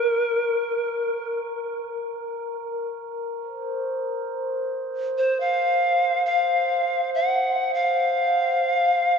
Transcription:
Already playing: pan flute A#4, glass harmonica A#4
3.40 glass harmonica C5
5.18 pan flute C5
5.40 pan flute F5
6.25 pan flute F5
7.15 pan flute F#5
7.74 pan flute F5

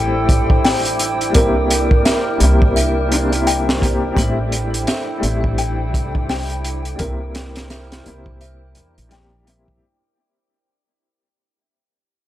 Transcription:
Already playing: upright bass A1, upright piano G3 A3 C4 E4, synth texture D4 D5, ambient pad E4 A4 C5 G5, music box G5
0.29 kick, closed hi-hat
0.50 kick
0.65 music box G5, snare, open hi-hat
0.85 closed hi-hat
0.99 closed hi-hat
1.21 closed hi-hat
1.30 upright piano G3 A#3
1.34 upright bass C2, upright piano C4, ambient pad A#4, music box A#4, kick, closed hi-hat
1.40 upright piano E4
1.70 closed hi-hat
1.91 kick
2.05 music box E5, snare, closed hi-hat
2.38 upright bass C2, upright piano G3 A#3 C4, closed hi-hat
2.43 upright piano E4
2.62 kick
2.76 music box E5, closed hi-hat
3.09 upright piano G3 A#3 C4, closed hi-hat
3.14 upright piano D4
3.30 upright piano G3 A#3 C4, closed hi-hat
3.35 upright piano E4
3.47 music box G5, closed hi-hat
3.69 snare
3.79 upright piano G3 A#3 C4, kick, closed hi-hat
3.84 upright piano G4
4.12 upright piano G3 A3
4.17 upright bass A1, upright piano C4, ambient pad E4 A4 C5 G5, music box G4, kick, closed hi-hat
4.22 upright piano E4
4.52 closed hi-hat
4.74 closed hi-hat
4.87 music box E5, snare, closed hi-hat
5.18 upright piano G3 A3
5.23 upright bass A1, upright piano C4, closed hi-hat
5.27 upright piano E4
5.44 kick
5.58 music box G5, closed hi-hat
5.94 upright bass C2, kick, closed hi-hat
6.15 kick
6.29 music box G5, snare, open hi-hat
6.50 closed hi-hat
6.64 closed hi-hat
6.85 closed hi-hat
6.95 upright piano G3 A#3, closed hi-hat
7.00 upright bass C2, upright piano C4, ambient pad E4 A#4 C5, music box A#4, kick
7.04 upright piano E4
7.35 snare, closed hi-hat
7.56 snare, closed hi-hat
7.70 music box E5, snare, closed hi-hat
7.92 snare, closed hi-hat
8.03 upright bass C2, upright piano G3 A#3 C4, closed hi-hat
8.08 upright piano E4
8.26 kick
8.41 music box E5, closed hi-hat
8.75 upright bass E2, closed hi-hat
8.98 upright bass A#1, closed hi-hat
9.09 upright piano G3 A#3 C4, music box G5, snare, closed hi-hat
9.14 upright piano G4
9.45 upright piano G3 A#3 C4, closed hi-hat
9.49 upright piano E4
9.68 kick

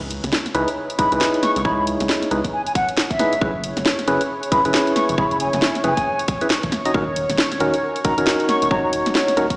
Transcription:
Already playing: analog synth bass C#2, analog synth pad C#5
0.10 open hi-hat
0.24 analog synth bass C#2, snare, closed hi-hat
0.33 snare
0.46 snare, closed hi-hat
0.54 analog synth bass C#2, synth stab D#4 E4 G#4 B4, open hi-hat
0.68 closed hi-hat
0.90 closed hi-hat
0.99 synth stab D#4 E4 G#4 B4, flute B5, kick, open hi-hat
1.12 analog synth bass C#2, synth stab D#4 E4 G#4 B4, closed hi-hat
1.21 snare
1.34 closed hi-hat
1.43 flute C#6, snare, open hi-hat
1.56 analog synth bass C#2, flute C#6, closed hi-hat
1.65 analog synth bass C#2, synth stab D#4 E4 G#4 C#5, flute B5, kick
1.78 flute B5
1.87 open hi-hat
2.00 analog synth bass C#2, snare, closed hi-hat
2.09 snare
2.23 snare, closed hi-hat
2.31 analog synth bass C#2, synth stab D#4 E4 G#4 B4, open hi-hat
2.44 kick, closed hi-hat
2.53 flute G#5
2.66 flute G#5, closed hi-hat
2.75 flute F#5, kick, open hi-hat
2.89 closed hi-hat
2.97 snare
3.10 flute E5, kick, closed hi-hat
3.19 synth stab D#4 E4 G#4 B4, snare, open hi-hat
3.33 closed hi-hat
3.41 analog synth bass F#1, synth stab C#4 E4 G#4 B4, kick
3.64 open hi-hat
3.77 analog synth bass F#1, snare, closed hi-hat
3.86 snare
3.99 snare, closed hi-hat
4.08 analog synth bass F#1, synth stab C#4 E4 G#4 B4, open hi-hat
4.21 closed hi-hat
4.43 closed hi-hat
4.52 synth stab C#4 E4 G#4 B4, flute B5, kick, open hi-hat
4.65 analog synth bass F#1, synth stab C#4 E4 G#4 B4, closed hi-hat
4.74 snare
4.87 closed hi-hat
4.96 flute C#6, snare, open hi-hat
5.09 analog synth bass F#1, flute C#6, closed hi-hat
5.18 analog synth bass F#1, synth stab C#4 E4 G#4 C#5, flute B5, kick
5.31 flute B5, closed hi-hat
5.40 flute G#5, open hi-hat
5.53 analog synth bass F#1, flute G#5, snare, closed hi-hat
5.62 snare
5.75 snare, closed hi-hat
5.84 analog synth bass F#1, synth stab C#4 E4 G#4 B4, flute G#5, open hi-hat
5.97 kick, closed hi-hat
6.19 closed hi-hat
6.28 kick, open hi-hat
6.41 synth stab C#4 E4 G#4 B4, closed hi-hat
6.50 snare
6.63 analog synth bass E1, kick, closed hi-hat
6.72 snare, open hi-hat
6.85 synth stab C#4 D#4 F#4 D#5, closed hi-hat
6.94 analog synth bass D#1, synth stab C#4 D#4 F#4 A#4, kick
7.16 open hi-hat
7.30 analog synth bass D#1, snare, closed hi-hat
7.38 snare
7.52 snare, closed hi-hat
7.60 analog synth bass D#1, synth stab C#4 D#4 F#4 A#4, open hi-hat
7.74 closed hi-hat
7.96 closed hi-hat
8.05 synth stab C#4 D#4 F#4 A#4, flute A#5, kick, open hi-hat
8.18 analog synth bass D#1, synth stab C#4 D#4 F#4 A#4, closed hi-hat
8.27 snare
8.40 closed hi-hat
8.49 flute C#6, snare, open hi-hat
8.62 analog synth bass D#1, flute C#6, closed hi-hat
8.71 analog synth bass D#1, synth stab C#4 D#4 F#4 C#5, flute A#5, kick
8.84 flute A#5
8.93 open hi-hat
9.06 analog synth bass D#1, snare, closed hi-hat
9.15 snare
9.28 snare, closed hi-hat
9.37 analog synth bass D#1, synth stab C#4 D#4 F#4 A#4, open hi-hat
9.50 kick, closed hi-hat

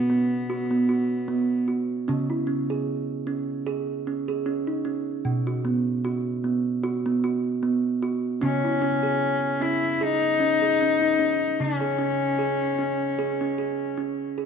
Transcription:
Already playing: kalimba B2 F#4, cello B3
0.10 kalimba B3
0.50 kalimba F#4
0.71 kalimba B3
0.89 kalimba F#4
1.28 kalimba B3
1.68 kalimba F#4
2.08 kalimba C#3 C#4
2.30 kalimba E4
2.47 kalimba C#4
2.70 kalimba G#4
3.27 kalimba C#4
3.67 kalimba G#4
4.07 kalimba C#4
4.28 kalimba G#4
4.46 kalimba C#4
4.67 kalimba D#4
4.85 kalimba C#4
5.25 kalimba B2
5.47 kalimba F#4
5.65 kalimba B3
6.05 kalimba F#4
6.44 kalimba B3
6.84 kalimba F#4
7.06 kalimba B3
7.24 kalimba F#4
7.63 kalimba B3
8.03 kalimba F#4
8.41 kalimba C#3 C#4, cello C#4
8.64 kalimba E4
8.82 kalimba C#4
9.03 kalimba G#4
9.61 kalimba C#4, cello E4
10.01 cello D#4, kalimba G#4
10.40 kalimba C#4
10.62 kalimba G#4
10.81 kalimba C#4
11.02 kalimba D#4
11.19 kalimba C#4
11.60 kalimba C#3, cello C#4
11.81 kalimba G#4
11.99 kalimba C#4
12.39 kalimba G#4
12.79 kalimba C#4
13.19 kalimba G#4
13.41 kalimba C#4
13.58 kalimba G#4
13.98 kalimba C#4
14.38 kalimba G#4

